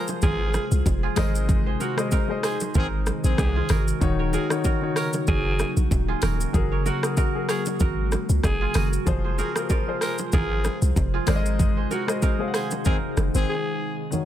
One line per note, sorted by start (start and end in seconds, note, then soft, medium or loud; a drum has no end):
0.00 3.98 C3 medium
0.00 1.15 F3 medium
0.00 1.20 F3 medium
0.00 3.98 G#3 medium
0.00 0.23 F4 medium
0.00 1.15 F4 medium
0.00 1.19 F4 medium
0.00 1.03 G#4 medium
0.00 1.17 G#4 medium
0.00 3.98 G#4 medium
0.00 0.22 A#4 medium
0.00 1.10 C5 medium
0.00 1.18 C5 loud
0.08 low bongo medium
0.08 shaker medium
0.22 0.58 G#1 loud
0.22 1.04 F4 medium
0.22 0.69 G#4 loud
0.22 1.17 A#4 medium
0.22 kick loud
0.22 high bongo medium
0.22 low conga medium
0.22 shaker medium
0.54 cross-stick medium
0.54 low bongo medium
0.54 shaker medium
0.71 0.82 C2 medium
0.71 shaker medium
0.86 1.09 F1 loud
0.86 kick medium
0.86 high bongo medium
0.86 shaker medium
1.03 1.87 F4 medium
1.03 1.67 G#4 medium
1.16 1.76 G#1 loud
1.16 3.99 D#3 medium
1.16 1.80 G#3 loud
1.16 6.50 D#4 medium
1.16 2.13 D#4 medium
1.16 1.80 G#4 medium
1.16 1.80 A#4 medium
1.16 1.81 C5 medium
1.16 1.81 D#5 loud
1.16 cross-stick loud
1.16 open hi-hat medium
1.16 low conga medium
1.16 shaker medium
1.35 shaker medium
1.49 kick loud
1.49 low conga medium
1.49 shaker medium
1.66 2.44 G#4 soft
1.66 2.43 C5 medium
1.80 1.96 F#4 medium
1.80 3.28 F#4 medium
1.80 2.12 A#4 medium
1.80 low bongo medium
1.80 shaker medium
1.97 2.21 G#3 medium
1.97 2.22 G#4 medium
1.97 2.22 C5 medium
1.97 2.23 D#5 medium
1.97 cross-stick loud
1.97 shaker medium
2.11 2.76 D#4 medium
2.11 2.75 A#4 medium
2.11 kick medium
2.11 high bongo medium
2.11 shaker medium
2.28 3.28 G#3 medium
2.28 3.28 G#4 medium
2.28 3.29 C5 medium
2.28 3.29 D#5 medium
2.43 2.59 G#4 medium
2.43 3.55 G#4 medium
2.43 3.62 C5 medium
2.43 cross-stick loud
2.43 open hi-hat medium
2.43 shaker medium
2.60 low bongo medium
2.60 shaker medium
2.74 3.11 G#1 medium
2.74 2.86 D#3 loud
2.74 2.86 C4 loud
2.74 4.38 D#4 medium
2.74 2.86 G#4 loud
2.74 3.70 A#4 medium
2.74 kick loud
2.74 high bongo medium
2.74 low conga medium
2.74 shaker medium
3.06 cross-stick medium
3.06 low bongo medium
3.06 shaker medium
3.24 3.34 A#1 medium
3.24 3.63 D#3 loud
3.24 3.63 C4 loud
3.24 3.63 G#4 loud
3.24 shaker medium
3.38 3.61 C2 loud
3.38 3.85 G#4 medium
3.38 kick medium
3.38 cross-stick loud
3.38 high bongo medium
3.38 shaker medium
3.56 3.77 F4 medium
3.56 4.92 G#4 medium
3.69 3.93 G#1 loud
3.69 4.34 F#4 medium
3.69 4.20 A#4 medium
3.69 cross-stick loud
3.69 open hi-hat medium
3.69 low conga medium
3.69 shaker medium
3.88 shaker medium
4.00 4.37 D#1 loud
4.00 9.03 C#3 medium
4.00 4.39 D#3 medium
4.00 9.03 F#3 medium
4.00 9.03 A#3 medium
4.00 4.39 D#4 medium
4.00 9.03 F#4 loud
4.00 4.40 F#4 medium
4.00 4.40 C#5 loud
4.00 kick loud
4.00 low conga medium
4.00 shaker medium
4.19 4.33 A#4 medium
4.19 4.96 C#5 medium
4.33 4.65 F#4 medium
4.33 4.48 G#4 medium
4.33 4.64 A#4 medium
4.33 low bongo medium
4.33 shaker medium
4.49 4.74 D#3 medium
4.49 4.75 D#4 medium
4.49 4.75 F#4 medium
4.49 4.75 C#5 medium
4.49 cross-stick loud
4.49 shaker medium
4.64 5.28 F#4 medium
4.64 4.97 A#4 medium
4.64 kick medium
4.64 high bongo medium
4.64 shaker medium
4.81 5.81 D#3 medium
4.81 5.81 D#4 medium
4.81 5.82 F#4 medium
4.81 5.82 C#5 medium
4.96 5.11 A#4 medium
4.96 5.27 A#4 medium
4.96 6.11 C#5 medium
4.96 cross-stick loud
4.96 open hi-hat medium
4.96 shaker medium
5.13 low bongo medium
5.13 shaker medium
5.27 5.64 F#1 loud
5.27 6.15 F#4 medium
5.27 5.74 G#4 loud
5.27 6.22 A#4 medium
5.27 kick loud
5.27 high bongo medium
5.27 low conga medium
5.27 shaker medium
5.59 cross-stick medium
5.59 low bongo medium
5.59 shaker medium
5.77 5.87 A#1 medium
5.77 shaker medium
5.91 6.14 D#1 loud
5.91 kick loud
5.91 high bongo medium
5.91 shaker medium
6.08 6.29 F4 medium
6.08 7.45 G#4 medium
6.22 6.46 D#1 medium
6.22 6.86 F#4 medium
6.22 6.72 A#4 medium
6.22 cross-stick loud
6.22 open hi-hat medium
6.22 low conga medium
6.22 shaker medium
6.41 shaker medium
6.53 6.90 F#1 loud
6.53 6.92 F#3 medium
6.53 9.04 G#3 medium
6.53 6.92 F#4 medium
6.53 6.92 G#4 medium
6.53 6.93 A#4 loud
6.53 kick loud
6.53 low conga medium
6.53 shaker medium
6.72 6.85 A#4 medium
6.72 7.49 C#5 medium
6.86 7.01 F#4 medium
6.86 7.18 F#4 medium
6.86 7.17 A#4 medium
6.86 low bongo medium
6.86 shaker medium
7.02 7.27 F#3 medium
7.02 7.27 F#4 medium
7.02 7.28 G#4 medium
7.02 7.28 A#4 medium
7.02 cross-stick loud
7.02 shaker medium
7.17 7.81 F#4 medium
7.17 7.49 A#4 medium
7.17 kick loud
7.17 high bongo medium
7.17 shaker medium
7.33 8.33 F#3 medium
7.33 8.34 F#4 medium
7.33 8.34 G#4 medium
7.33 8.35 A#4 medium
7.49 7.64 G#4 medium
7.49 7.80 A#4 medium
7.49 8.64 C#5 medium
7.49 cross-stick loud
7.49 open hi-hat medium
7.49 shaker medium
7.66 low bongo medium
7.66 shaker medium
7.80 8.16 G#1 loud
7.80 8.68 F#4 medium
7.80 8.75 A#4 medium
7.80 kick loud
7.80 high bongo medium
7.80 low conga medium
7.80 shaker medium
8.12 cross-stick medium
8.12 low bongo medium
8.12 shaker medium
8.29 8.40 C#2 loud
8.29 shaker medium
8.44 8.67 F#1 loud
8.44 8.90 G#4 medium
8.44 kick medium
8.44 cross-stick loud
8.44 high bongo medium
8.44 shaker medium
8.61 8.82 F4 medium
8.61 9.25 G#4 medium
8.74 8.98 F#1 medium
8.74 9.39 F#4 medium
8.74 9.38 A#4 medium
8.74 cross-stick loud
8.74 open hi-hat medium
8.74 low conga medium
8.74 shaker medium
8.93 shaker medium
9.06 9.42 F1 loud
9.06 14.08 C3 medium
9.06 9.44 F3 medium
9.06 11.26 F3 medium
9.06 14.08 G#3 medium
9.06 9.45 F4 medium
9.06 11.26 F4 medium
9.06 11.26 G#4 loud
9.06 9.45 G#4 medium
9.06 9.45 C5 loud
9.06 kick loud
9.06 low conga medium
9.06 shaker medium
9.24 10.02 G#4 medium
9.24 10.01 C5 medium
9.38 9.77 F#4 medium
9.38 9.54 G#4 medium
9.38 9.70 A#4 medium
9.38 low bongo medium
9.38 shaker medium
9.55 9.79 F3 medium
9.55 9.80 F4 medium
9.55 9.80 G#4 medium
9.55 9.81 A#4 medium
9.55 cross-stick loud
9.55 shaker medium
9.69 10.34 F4 medium
9.69 10.33 A#4 medium
9.69 kick loud
9.69 high bongo medium
9.69 shaker medium
9.86 10.86 F3 medium
9.86 10.86 F4 medium
9.86 10.87 G#4 medium
9.86 10.87 C5 medium
10.01 11.13 G#4 medium
10.01 10.17 A#4 medium
10.01 11.20 C5 medium
10.01 cross-stick medium
10.01 open hi-hat medium
10.01 shaker medium
10.18 low bongo medium
10.18 shaker medium
10.32 10.69 G#1 loud
10.32 11.14 F4 medium
10.32 10.80 G#4 loud
10.32 11.28 A#4 medium
10.32 kick loud
10.32 high bongo medium
10.32 low conga medium
10.32 shaker medium
10.64 cross-stick medium
10.64 low bongo medium
10.64 shaker medium
10.82 10.92 C2 medium
10.82 shaker medium
10.96 11.19 F1 loud
10.96 kick medium
10.96 high bongo medium
10.96 shaker medium
11.14 11.98 F4 medium
11.14 11.77 G#4 medium
11.27 11.87 G#1 loud
11.27 14.09 D#3 medium
11.27 11.90 G#3 loud
11.27 14.09 D#4 medium
11.27 12.23 D#4 medium
11.27 11.91 G#4 medium
11.27 14.09 G#4 medium
11.27 11.91 A#4 medium
11.27 11.91 C5 medium
11.27 11.36 D5 medium
11.27 cross-stick loud
11.27 open hi-hat medium
11.27 low conga medium
11.27 shaker medium
11.36 11.95 D#5 loud
11.46 shaker medium
11.59 kick loud
11.59 low conga medium
11.59 shaker medium
11.77 12.55 G#4 medium
11.77 12.54 C5 medium
11.91 12.06 F#4 medium
11.91 13.38 F#4 medium
11.91 12.22 A#4 medium
11.91 low bongo medium
11.91 shaker medium
12.07 12.32 G#3 medium
12.07 12.32 G#4 medium
12.07 12.33 C5 medium
12.07 12.33 D#5 medium
12.07 cross-stick loud
12.07 shaker medium
12.22 12.86 D#4 medium
12.22 12.85 A#4 medium
12.22 kick medium
12.22 high bongo medium
12.22 shaker medium
12.39 13.39 G#3 medium
12.39 13.39 G#4 medium
12.39 13.39 C5 medium
12.39 12.46 F5 medium
12.48 13.43 F#5 medium
12.54 12.69 G#4 medium
12.54 13.91 G#4 medium
12.54 13.73 C5 medium
12.54 cross-stick loud
12.54 open hi-hat medium
12.54 shaker medium
12.71 low bongo medium
12.71 shaker medium
12.85 12.97 D#3 loud
12.85 12.97 C4 loud
12.85 14.25 D#4 medium
12.85 12.97 G#4 loud
12.85 14.12 A#4 medium
12.85 kick loud
12.85 low conga medium
12.85 shaker medium
13.17 13.30 F#1 loud
13.17 cross-stick medium
13.17 low bongo medium
13.17 shaker medium
13.35 13.45 G#1 medium
13.35 13.55 D#3 medium
13.35 13.55 C4 loud
13.35 13.55 G#4 loud
13.35 shaker medium
13.50 13.95 G#4 medium
14.11 14.25 D#3 medium
14.11 14.25 D#4 medium
14.11 14.25 F#4 medium
14.11 14.25 A#4 medium
14.11 14.25 C#5 medium
14.11 low conga medium
14.11 shaker medium